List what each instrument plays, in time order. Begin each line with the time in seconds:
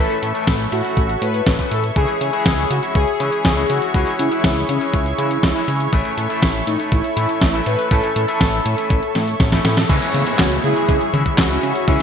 Already playing: clean electric guitar A2 E3, analog synth pad A4 C#5 E5 C#6
0.00 clean electric guitar A3 C#4 E4, analog polysynth A4
0.10 closed hi-hat
0.23 analog synth bass A2, closed hi-hat
0.34 clean electric guitar A2 E3 A3 C#4 E4, closed hi-hat
0.47 analog synth bass A1, kick, snare, closed hi-hat
0.60 closed hi-hat
0.72 analog synth bass A2, analog polysynth F#4, closed hi-hat
0.84 clean electric guitar A2 E3 A3 C#4 E4, closed hi-hat
0.97 analog synth bass A1, kick, closed hi-hat
1.09 closed hi-hat
1.22 analog synth bass A2, analog polysynth B4, closed hi-hat
1.34 closed hi-hat
1.47 analog synth bass A1, kick, snare, closed hi-hat
1.58 clean electric guitar A2 E3 A3 C#4 E4, kick, closed hi-hat
1.71 analog synth bass A2, analog polysynth A4, closed hi-hat
1.84 closed hi-hat
1.96 analog synth bass C#2, clean electric guitar E3 G#3 C#4 E4, analog synth pad G#4, analog polysynth G#4, kick, closed hi-hat
2.09 closed hi-hat
2.21 analog synth bass C#3, closed hi-hat
2.33 clean electric guitar E3 G#3 C#4 E4, analog polysynth G#4, closed hi-hat
2.46 analog synth bass C#2, kick, snare, closed hi-hat
2.58 closed hi-hat
2.70 analog synth bass C#3, analog polysynth F#4, closed hi-hat
2.83 clean electric guitar E3 G#3 C#4 E4, closed hi-hat
2.95 analog synth bass C#2, analog polysynth G#4, kick, closed hi-hat
3.08 closed hi-hat
3.20 analog synth bass C#3, clean electric guitar E3 G#3 C#4 E4, closed hi-hat
3.32 closed hi-hat
3.45 analog synth bass C#2, kick, snare, closed hi-hat
3.57 clean electric guitar E3 G#3 C#4 E4, closed hi-hat
3.70 analog synth bass C#3, analog polysynth F#4, closed hi-hat
3.82 closed hi-hat
3.94 analog synth bass C#2, clean electric guitar E3 G#3 C#4 E4, kick, closed hi-hat
4.07 closed hi-hat
4.19 analog synth bass C#3, analog polysynth E4, closed hi-hat
4.31 clean electric guitar E3 G#3 C#4 E4, closed hi-hat
4.44 analog synth bass C#2, kick, snare, closed hi-hat
4.57 closed hi-hat
4.69 analog synth bass C#3, analog polysynth C#4, closed hi-hat
4.81 clean electric guitar E3 G#3 C#4 E4, closed hi-hat
4.94 analog synth bass C#2, analog polysynth E4, kick, closed hi-hat
5.06 closed hi-hat
5.18 analog synth bass C#3, clean electric guitar E3 G#3 C#4 E4, closed hi-hat
5.31 closed hi-hat
5.43 analog synth bass C#2, kick, snare, closed hi-hat
5.55 clean electric guitar E3 G#3 C#4 E4, closed hi-hat
5.68 analog synth bass C#3, closed hi-hat
5.80 closed hi-hat
5.92 analog synth bass A1, clean electric guitar A2 E3 A3 C#4 E4, analog synth pad A4 E5, kick, closed hi-hat
6.05 closed hi-hat
6.18 analog synth bass A2, closed hi-hat
6.30 clean electric guitar A2 E3 A3 C#4 E4, closed hi-hat
6.42 analog synth bass A1, kick, snare, closed hi-hat
6.55 closed hi-hat
6.67 analog synth bass A2, analog polysynth D#4, closed hi-hat
6.79 clean electric guitar A2 E3 A3 C#4 E4, closed hi-hat
6.92 analog synth bass A1, analog polysynth E4, kick, closed hi-hat
7.04 closed hi-hat
7.16 analog synth bass A2, clean electric guitar A2 E3 A3 C#4 E4, closed hi-hat
7.29 closed hi-hat
7.42 analog synth bass A1, kick, snare, closed hi-hat
7.53 clean electric guitar A2 E3 A3 C#4 E4, closed hi-hat
7.66 analog synth bass A2, analog polysynth B4, closed hi-hat
7.79 closed hi-hat
7.91 analog synth bass A1, clean electric guitar A2 E3 A3 C#4 E4, analog polysynth A4, kick, closed hi-hat
8.04 closed hi-hat
8.16 analog synth bass A2, analog polysynth A4, closed hi-hat
8.28 clean electric guitar A2 E3 A3 C#4 E4, closed hi-hat
8.41 analog synth bass A1, kick, snare, closed hi-hat
8.53 closed hi-hat
8.65 analog synth bass A2, closed hi-hat
8.77 clean electric guitar A2 E3 A3 C#4 E4, closed hi-hat
8.90 analog synth bass A1, kick, closed hi-hat
9.03 closed hi-hat
9.15 analog synth bass A2, snare, closed hi-hat
9.28 closed hi-hat
9.40 analog synth bass A1, kick, snare, closed hi-hat
9.52 clean electric guitar A2 E3 A3 C#4 E4, kick, snare, closed hi-hat
9.65 analog synth bass A2, snare, closed hi-hat
9.77 snare, closed hi-hat
9.89 analog synth bass C#2, clean electric guitar E3 G#3 C#4 E4, analog synth pad G#4 C#5 E5 C#6, kick, closed hi-hat, crash, downlifter
10.02 closed hi-hat
10.14 analog synth bass C#3, closed hi-hat
10.26 clean electric guitar E3 G#3 C#4 E4, closed hi-hat
10.39 analog synth bass C#2, analog polysynth C#4 F#4, kick, snare, clap, closed hi-hat
10.52 closed hi-hat
10.64 analog synth bass C#3, analog polysynth E4 G#4, closed hi-hat
10.76 clean electric guitar E3 G#3 C#4 E4, closed hi-hat
10.89 analog synth bass C#2, kick, closed hi-hat
11.01 closed hi-hat
11.13 analog synth bass C#3, clean electric guitar E3 G#3 C#4 E4, closed hi-hat, high conga
11.26 kick, closed hi-hat
11.38 analog synth bass C#2, analog polysynth C#4 F#4, kick, snare, clap, closed hi-hat
11.50 clean electric guitar E3 G#3 C#4 E4, closed hi-hat
11.63 analog synth bass C#3, closed hi-hat
11.76 closed hi-hat
11.88 analog synth bass C#2, clean electric guitar E3 G#3 C#4 E4, analog polysynth C#4 E4, kick, closed hi-hat